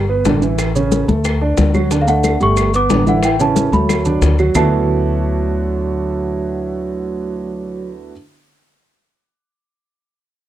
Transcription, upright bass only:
0, 0, Header, 1, 2, 480
1, 0, Start_track
1, 0, Key_signature, 2, "major"
1, 0, Tempo, 330761
1, 852, Time_signature, 4, 2, 24, 8
1, 15216, End_track
2, 0, Start_track
2, 0, Title_t, "Upright bass"
2, 0, Program_c, 0, 32
2, 0, Note_on_c, 0, 31, 75
2, 322, Note_off_c, 0, 31, 0
2, 369, Note_on_c, 0, 33, 73
2, 1490, Note_off_c, 0, 33, 0
2, 1573, Note_on_c, 0, 38, 85
2, 2243, Note_off_c, 0, 38, 0
2, 2291, Note_on_c, 0, 38, 85
2, 3411, Note_off_c, 0, 38, 0
2, 3498, Note_on_c, 0, 31, 78
2, 4166, Note_off_c, 0, 31, 0
2, 4201, Note_on_c, 0, 33, 75
2, 5325, Note_off_c, 0, 33, 0
2, 5403, Note_on_c, 0, 38, 77
2, 6078, Note_off_c, 0, 38, 0
2, 6115, Note_on_c, 0, 38, 65
2, 6548, Note_off_c, 0, 38, 0
2, 6602, Note_on_c, 0, 38, 78
2, 11757, Note_off_c, 0, 38, 0
2, 15216, End_track
0, 0, End_of_file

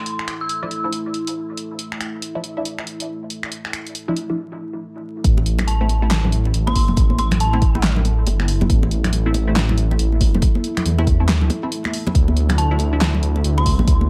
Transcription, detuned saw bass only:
0, 0, Header, 1, 2, 480
1, 0, Start_track
1, 0, Key_signature, 0, "minor"
1, 0, Tempo, 431655
1, 71, Time_signature, 4, 2, 24, 8
1, 15674, End_track
2, 0, Start_track
2, 0, Title_t, "Detuned saw bass"
2, 0, Program_c, 0, 39
2, 5831, Note_on_c, 0, 33, 96
2, 7256, Note_off_c, 0, 33, 0
2, 7271, Note_on_c, 0, 33, 93
2, 7736, Note_off_c, 0, 33, 0
2, 7751, Note_on_c, 0, 33, 98
2, 9176, Note_off_c, 0, 33, 0
2, 9191, Note_on_c, 0, 31, 96
2, 9656, Note_off_c, 0, 31, 0
2, 9669, Note_on_c, 0, 33, 96
2, 11095, Note_off_c, 0, 33, 0
2, 11111, Note_on_c, 0, 33, 95
2, 11576, Note_off_c, 0, 33, 0
2, 12071, Note_on_c, 0, 40, 99
2, 12571, Note_off_c, 0, 40, 0
2, 12571, Note_on_c, 0, 39, 99
2, 12776, Note_off_c, 0, 39, 0
2, 13509, Note_on_c, 0, 38, 98
2, 14935, Note_off_c, 0, 38, 0
2, 14949, Note_on_c, 0, 38, 94
2, 15415, Note_off_c, 0, 38, 0
2, 15429, Note_on_c, 0, 38, 99
2, 15674, Note_off_c, 0, 38, 0
2, 15674, End_track
0, 0, End_of_file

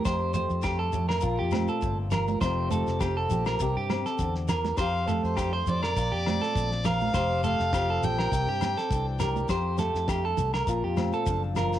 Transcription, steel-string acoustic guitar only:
0, 0, Header, 1, 3, 480
1, 0, Start_track
1, 0, Key_signature, -1, "major"
1, 0, Tempo, 589971
1, 46, Time_signature, 4, 2, 24, 8
1, 9594, End_track
2, 0, Start_track
2, 0, Title_t, "Steel-string acoustic guitar"
2, 0, Program_c, 0, 25
2, 0, Note_on_c, 0, 60, 54
2, 41, Note_on_c, 0, 41, 66
2, 48, Note_on_c, 0, 67, 64
2, 286, Note_off_c, 0, 60, 0
2, 289, Note_on_c, 0, 57, 58
2, 513, Note_off_c, 0, 41, 0
2, 516, Note_on_c, 0, 43, 63
2, 748, Note_off_c, 0, 43, 0
2, 751, Note_on_c, 0, 45, 62
2, 983, Note_off_c, 0, 57, 0
2, 983, Note_off_c, 0, 67, 0
2, 990, Note_on_c, 0, 46, 65
2, 999, Note_on_c, 0, 65, 55
2, 1000, Note_off_c, 0, 45, 0
2, 1238, Note_on_c, 0, 60, 56
2, 1482, Note_on_c, 0, 45, 63
2, 1723, Note_off_c, 0, 45, 0
2, 1726, Note_on_c, 0, 43, 52
2, 1961, Note_off_c, 0, 46, 0
2, 1963, Note_off_c, 0, 43, 0
2, 1966, Note_off_c, 0, 65, 0
2, 1966, Note_on_c, 0, 41, 67
2, 1971, Note_on_c, 0, 53, 57
2, 1973, Note_off_c, 0, 60, 0
2, 1976, Note_on_c, 0, 57, 58
2, 1981, Note_on_c, 0, 60, 59
2, 1986, Note_on_c, 0, 67, 59
2, 2200, Note_off_c, 0, 57, 0
2, 2210, Note_on_c, 0, 57, 59
2, 2445, Note_off_c, 0, 53, 0
2, 2454, Note_on_c, 0, 53, 64
2, 2455, Note_off_c, 0, 60, 0
2, 2458, Note_on_c, 0, 60, 57
2, 2685, Note_off_c, 0, 67, 0
2, 2695, Note_on_c, 0, 67, 57
2, 2905, Note_off_c, 0, 57, 0
2, 2907, Note_off_c, 0, 53, 0
2, 2907, Note_off_c, 0, 67, 0
2, 2930, Note_off_c, 0, 41, 0
2, 2940, Note_on_c, 0, 48, 61
2, 2943, Note_on_c, 0, 67, 60
2, 3185, Note_off_c, 0, 60, 0
2, 3185, Note_on_c, 0, 60, 49
2, 3409, Note_off_c, 0, 48, 0
2, 3413, Note_on_c, 0, 50, 58
2, 3653, Note_off_c, 0, 50, 0
2, 3655, Note_on_c, 0, 52, 52
2, 3871, Note_off_c, 0, 67, 0
2, 3894, Note_off_c, 0, 52, 0
2, 3904, Note_on_c, 0, 67, 63
2, 4143, Note_off_c, 0, 60, 0
2, 4146, Note_on_c, 0, 57, 59
2, 4377, Note_on_c, 0, 43, 61
2, 4615, Note_off_c, 0, 43, 0
2, 4622, Note_on_c, 0, 45, 56
2, 4832, Note_off_c, 0, 67, 0
2, 4833, Note_off_c, 0, 57, 0
2, 4857, Note_off_c, 0, 45, 0
2, 4860, Note_on_c, 0, 46, 62
2, 5100, Note_on_c, 0, 60, 56
2, 5574, Note_on_c, 0, 43, 58
2, 5813, Note_off_c, 0, 43, 0
2, 5816, Note_off_c, 0, 46, 0
2, 5820, Note_on_c, 0, 41, 69
2, 5828, Note_on_c, 0, 67, 66
2, 6055, Note_off_c, 0, 60, 0
2, 6059, Note_on_c, 0, 57, 58
2, 6297, Note_on_c, 0, 53, 64
2, 6301, Note_on_c, 0, 60, 60
2, 6533, Note_off_c, 0, 67, 0
2, 6543, Note_on_c, 0, 67, 58
2, 6748, Note_off_c, 0, 53, 0
2, 6748, Note_off_c, 0, 57, 0
2, 6751, Note_off_c, 0, 67, 0
2, 6767, Note_on_c, 0, 48, 68
2, 6774, Note_on_c, 0, 67, 61
2, 6775, Note_off_c, 0, 41, 0
2, 7026, Note_off_c, 0, 60, 0
2, 7026, Note_on_c, 0, 60, 52
2, 7250, Note_off_c, 0, 48, 0
2, 7261, Note_on_c, 0, 52, 61
2, 7266, Note_on_c, 0, 62, 56
2, 7481, Note_off_c, 0, 67, 0
2, 7490, Note_on_c, 0, 67, 53
2, 7704, Note_off_c, 0, 67, 0
2, 7709, Note_off_c, 0, 52, 0
2, 7712, Note_off_c, 0, 62, 0
2, 7724, Note_on_c, 0, 41, 70
2, 7730, Note_on_c, 0, 67, 72
2, 7971, Note_off_c, 0, 60, 0
2, 7974, Note_on_c, 0, 57, 53
2, 8204, Note_off_c, 0, 41, 0
2, 8208, Note_on_c, 0, 43, 61
2, 8445, Note_off_c, 0, 43, 0
2, 8449, Note_on_c, 0, 45, 54
2, 8662, Note_off_c, 0, 67, 0
2, 8665, Note_off_c, 0, 57, 0
2, 8689, Note_off_c, 0, 45, 0
2, 8689, Note_on_c, 0, 46, 72
2, 8696, Note_on_c, 0, 65, 67
2, 8929, Note_on_c, 0, 60, 61
2, 9168, Note_on_c, 0, 53, 61
2, 9173, Note_on_c, 0, 62, 53
2, 9402, Note_off_c, 0, 65, 0
2, 9412, Note_on_c, 0, 65, 58
2, 9594, Note_off_c, 0, 46, 0
2, 9594, Note_off_c, 0, 53, 0
2, 9594, Note_off_c, 0, 60, 0
2, 9594, Note_off_c, 0, 62, 0
2, 9594, Note_off_c, 0, 65, 0
2, 9594, End_track
3, 0, Start_track
3, 0, Title_t, "Muted steel-string acoustic guitar strokes"
3, 3898, Note_on_c, 9, 29, 65
3, 3980, Note_off_c, 9, 29, 0
3, 4865, Note_on_c, 9, 29, 60
3, 4946, Note_off_c, 9, 29, 0
3, 9594, End_track
0, 0, End_of_file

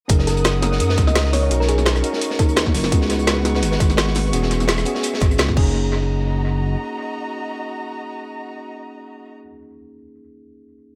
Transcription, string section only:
0, 0, Header, 1, 2, 480
1, 0, Start_track
1, 0, Tempo, 352941
1, 131, Time_signature, 4, 2, 24, 8
1, 14896, End_track
2, 0, Start_track
2, 0, Title_t, "String section"
2, 0, Program_c, 0, 48
2, 133, Note_on_c, 0, 78, 68
2, 133, Note_on_c, 0, 87, 86
2, 135, Note_on_c, 0, 70, 79
2, 2033, Note_off_c, 0, 78, 0
2, 2033, Note_off_c, 0, 87, 0
2, 2049, Note_on_c, 0, 75, 66
2, 2050, Note_on_c, 0, 85, 86
2, 3935, Note_off_c, 0, 70, 0
2, 3951, Note_off_c, 0, 75, 0
2, 3965, Note_on_c, 0, 78, 68
2, 3966, Note_on_c, 0, 71, 76
2, 5869, Note_off_c, 0, 71, 0
2, 5869, Note_off_c, 0, 78, 0
2, 5887, Note_on_c, 0, 68, 75
2, 5889, Note_on_c, 0, 76, 71
2, 7516, Note_off_c, 0, 85, 0
2, 7552, Note_off_c, 0, 68, 0
2, 7553, Note_off_c, 0, 76, 0
2, 7575, Note_on_c, 0, 82, 82
2, 7577, Note_on_c, 0, 66, 74
2, 7577, Note_on_c, 0, 75, 68
2, 12687, Note_off_c, 0, 82, 0
2, 12688, Note_off_c, 0, 66, 0
2, 12688, Note_off_c, 0, 75, 0
2, 14896, End_track
0, 0, End_of_file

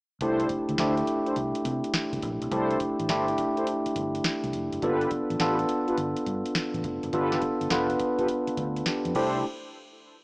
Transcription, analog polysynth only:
0, 0, Header, 1, 2, 480
1, 0, Start_track
1, 0, Key_signature, 0, "major"
1, 0, Tempo, 576923
1, 172, Time_signature, 4, 2, 24, 8
1, 8519, End_track
2, 0, Start_track
2, 0, Title_t, "Analog polysynth"
2, 0, Program_c, 0, 90
2, 171, Note_on_c, 0, 62, 90
2, 173, Note_on_c, 0, 64, 85
2, 175, Note_on_c, 0, 69, 84
2, 177, Note_on_c, 0, 72, 98
2, 399, Note_off_c, 0, 62, 0
2, 400, Note_off_c, 0, 64, 0
2, 400, Note_off_c, 0, 69, 0
2, 401, Note_off_c, 0, 72, 0
2, 651, Note_on_c, 0, 62, 78
2, 652, Note_on_c, 0, 64, 68
2, 654, Note_on_c, 0, 69, 69
2, 656, Note_on_c, 0, 72, 85
2, 787, Note_off_c, 0, 62, 0
2, 788, Note_off_c, 0, 64, 0
2, 788, Note_off_c, 0, 69, 0
2, 789, Note_off_c, 0, 72, 0
2, 1049, Note_on_c, 0, 62, 79
2, 1051, Note_on_c, 0, 64, 71
2, 1053, Note_on_c, 0, 69, 76
2, 1055, Note_on_c, 0, 72, 89
2, 1120, Note_off_c, 0, 62, 0
2, 1120, Note_off_c, 0, 64, 0
2, 1122, Note_off_c, 0, 69, 0
2, 1123, Note_off_c, 0, 72, 0
2, 2090, Note_on_c, 0, 62, 90
2, 2093, Note_on_c, 0, 64, 77
2, 2093, Note_on_c, 0, 69, 81
2, 2095, Note_on_c, 0, 72, 100
2, 2318, Note_off_c, 0, 62, 0
2, 2319, Note_off_c, 0, 64, 0
2, 2319, Note_off_c, 0, 69, 0
2, 2320, Note_off_c, 0, 72, 0
2, 2569, Note_on_c, 0, 62, 69
2, 2571, Note_on_c, 0, 64, 69
2, 2573, Note_on_c, 0, 69, 64
2, 2573, Note_on_c, 0, 72, 81
2, 2706, Note_off_c, 0, 62, 0
2, 2707, Note_off_c, 0, 64, 0
2, 2708, Note_off_c, 0, 69, 0
2, 2708, Note_off_c, 0, 72, 0
2, 2969, Note_on_c, 0, 62, 76
2, 2971, Note_on_c, 0, 64, 69
2, 2972, Note_on_c, 0, 69, 74
2, 2974, Note_on_c, 0, 72, 89
2, 3040, Note_off_c, 0, 62, 0
2, 3040, Note_off_c, 0, 64, 0
2, 3041, Note_off_c, 0, 69, 0
2, 3042, Note_off_c, 0, 72, 0
2, 4010, Note_on_c, 0, 65, 88
2, 4011, Note_on_c, 0, 67, 85
2, 4014, Note_on_c, 0, 69, 77
2, 4014, Note_on_c, 0, 71, 99
2, 4238, Note_off_c, 0, 65, 0
2, 4238, Note_off_c, 0, 67, 0
2, 4240, Note_off_c, 0, 69, 0
2, 4240, Note_off_c, 0, 71, 0
2, 4490, Note_on_c, 0, 65, 73
2, 4492, Note_on_c, 0, 67, 69
2, 4493, Note_on_c, 0, 69, 74
2, 4495, Note_on_c, 0, 71, 86
2, 4627, Note_off_c, 0, 65, 0
2, 4628, Note_off_c, 0, 67, 0
2, 4628, Note_off_c, 0, 69, 0
2, 4629, Note_off_c, 0, 71, 0
2, 4888, Note_on_c, 0, 65, 86
2, 4889, Note_on_c, 0, 67, 71
2, 4891, Note_on_c, 0, 69, 74
2, 4892, Note_on_c, 0, 71, 90
2, 4959, Note_off_c, 0, 65, 0
2, 4960, Note_off_c, 0, 67, 0
2, 4960, Note_off_c, 0, 69, 0
2, 4961, Note_off_c, 0, 71, 0
2, 5930, Note_on_c, 0, 65, 93
2, 5931, Note_on_c, 0, 67, 80
2, 5934, Note_on_c, 0, 69, 85
2, 5936, Note_on_c, 0, 71, 102
2, 6158, Note_off_c, 0, 65, 0
2, 6159, Note_off_c, 0, 67, 0
2, 6160, Note_off_c, 0, 69, 0
2, 6161, Note_off_c, 0, 71, 0
2, 6409, Note_on_c, 0, 65, 76
2, 6412, Note_on_c, 0, 67, 65
2, 6413, Note_on_c, 0, 69, 67
2, 6415, Note_on_c, 0, 71, 84
2, 6546, Note_off_c, 0, 65, 0
2, 6547, Note_off_c, 0, 67, 0
2, 6548, Note_off_c, 0, 69, 0
2, 6549, Note_off_c, 0, 71, 0
2, 6809, Note_on_c, 0, 65, 83
2, 6810, Note_on_c, 0, 67, 73
2, 6812, Note_on_c, 0, 69, 77
2, 6814, Note_on_c, 0, 71, 88
2, 6879, Note_off_c, 0, 65, 0
2, 6880, Note_off_c, 0, 67, 0
2, 6881, Note_off_c, 0, 69, 0
2, 6882, Note_off_c, 0, 71, 0
2, 7608, Note_on_c, 0, 62, 82
2, 7611, Note_on_c, 0, 64, 81
2, 7613, Note_on_c, 0, 69, 82
2, 7616, Note_on_c, 0, 72, 99
2, 7803, Note_off_c, 0, 62, 0
2, 7805, Note_off_c, 0, 64, 0
2, 7805, Note_off_c, 0, 69, 0
2, 7807, Note_off_c, 0, 72, 0
2, 8519, End_track
0, 0, End_of_file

